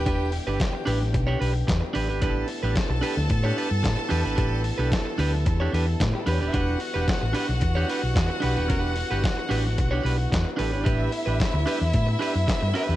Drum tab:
HH |x-o-x-o-x-o-x-o-|x-o-x-o-x-o-x-o-|x-o-x-o-x-o-x-o-|x-o-x-o-x-o-x-o-|
CP |----x-------x---|----x-------x---|----x-------x---|----x-------x---|
SD |----o--o----o---|----o--o----o---|----o--o----o---|----o--o----o---|
BD |o---o---o---o---|o---o---o---o---|o---o---o---o---|o---o---o---o---|

HH |x-o-x-o-x-o-x-o-|x-o-x-o-x-o-x-o-|
CP |----x-------x---|----x-------x---|
SD |----o--o----o---|----o--o----o---|
BD |o---o---o---o---|o---o---o---o---|